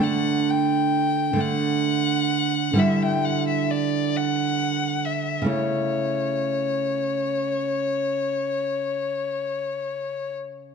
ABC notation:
X:1
M:12/8
L:1/16
Q:3/8=44
K:Amix
V:1 name="Violin"
f2 g4 f6 e g f e d2 f4 e2 | c16- c6 z2 |]
V:2 name="Nylon-string guitar"
[D,A,D]6 [D,A,D]6 [D,G,E]12 | [C,A,E]24 |]